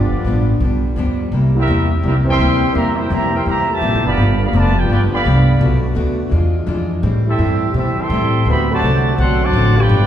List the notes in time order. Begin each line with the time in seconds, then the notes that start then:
Already playing: G1 G2 D3 F3 G3 B3 D4 F4 G4 D5
0.12 muted upright bass stroke
0.24 A1 G2 F3 B3 D4
0.60 B1 G2 F3 B3
0.65 D4
0.96 D2 G2 F3 B3 D4
1.32 C2 A#2 C3 G3 A#3 E4
1.55 G3 A#3 C4 E4 G4 A#4 E5
1.67 E2 C3 G3 A#3 E4
2.02 C2 C3 G3 A#3 C4 E4 G4 A#4 E5
2.25 E3 G3 C4
2.29 A#4 E5 G5 C6
2.38 D2 C3 G3 A#3 E4
2.72 E2 C3 E3 G3 A#3 G4 C5 E5 A#5
2.77 A#3 E4
2.96 A#3 E4 G4 A#4 C5 G5
3.08 F2 C3 E3 G3 A#3 A#5
3.12 A#3 E4 G4 C5 E5
3.31 E3 G3 C4 E5 C6
3.35 A#4 G5
3.44 E2 C3 E3 G3 A#3 G4 E5
3.48 E4 C5 A#5
3.68 A#2 E3 A3 G4 C5 E5 A5
3.81 A1 C3 G3 A#3 E4
3.94 G1
4.03 E1 D3 F3 B3 G4 D5 F5 B5
4.17 G1 G2 D3 F3 G3 B3 F4
4.21 D4
4.38 D3 F3 B3
4.43 G4 D5 F5 B5
4.51 F1 G2 F3 A3 B3 F4 B4 D5
4.55 D4 A5
4.73 B3 D4 G4
4.78 F4 B4 D5 G5
4.87 G1 G2 B3 D4 G4
4.91 F3 B3 D4 F4 B4 D5 G5
5.10 D3 F3 B3 G4 D5 F5 B5, muted upright bass stroke
5.24 C2 G2 F3 B3 D4
5.59 B1 B2 A3 B3 D4 F#4
5.95 D2 B2 A3 D4 F#4
6.29 E2 E3 G#3 D4 F4
6.33 E3 G#3 D4 F4
6.66 F2 E3 G#3 D4 F4
7.02 A2 G3 A3 C4 E4 G4
7.26 G3 C4 E4 G4 A4 E5
7.38 G2 A2 G3 C4 E4
7.74 A2 B2 G3 C4 E4 G4 A4 E5
7.79 E4
7.97 E3 G3 C4 A4 E5 G5 C6, muted upright bass stroke
8.10 A2 G3 C4
8.14 E4
8.45 D2 D3 A3 B3 C4 F#4 G4 C5 E5 B5
8.50 C4 F#4
8.70 C3 F#3 A3 F#4 C5 D5 A5
8.82 C2 D3 A3 C4 F#4
9.17 B1 D3 F#3 A3 C4 A4 D5 F#5 C6
9.21 C4 F#4
9.42 F#3 A3 D4 C5 F#5 A5 D6
9.53 A1 D3 A3 C4
9.58 F#4
9.76 B3 D4 F4 G4 B4 D5 G5
9.89 G1 G2 F3 G3 B3 D4 F4